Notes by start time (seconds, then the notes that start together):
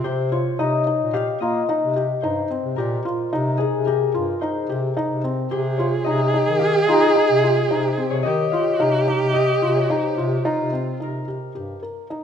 0.04 C3 G4 C5
0.32 F4 C#5
0.59 C3 D#4 D#5
0.86 D#4
1.01 A#2
1.13 G4 F5
1.40 A#3 F4 D#5
1.69 D#4
1.82 C3
1.96 G4
2.22 G2 D#4 C5
2.50 C4
2.65 C3
2.76 A#2 G4 A#4
3.05 F4
3.33 C3 D#4
3.58 D#4 G#4
3.74 C3
3.86 G4 A#4
4.14 G2 F4
4.41 D#4 C5
4.69 C3 G4
4.97 D#4
5.11 C3
5.24 C4
5.50 C3 G4 G#4 C5
5.78 F4 C#5
6.04 C3 D#4 D#5
6.34 D#4
6.48 D#3
6.59 G4 F5
6.87 D#4 F4 D#5
7.16 D#4
7.30 C3
7.44 F4
7.68 C3 D#4 C5
7.98 C4
8.10 C3 C#5
8.23 D#3 G4 D#5
8.51 F4 F5
8.79 C3 D#4 F5
9.08 D#4
9.22 C3
9.34 G4 D#5
9.62 C3 F4
9.76 C#5
9.89 D#4 C5
10.18 C3 F4
10.45 D#4 F4
10.58 C3
10.73 C4
11.00 C3 D#4 A#4
11.28 C3 G4
11.55 G2 G4
11.83 A#4
12.10 D#4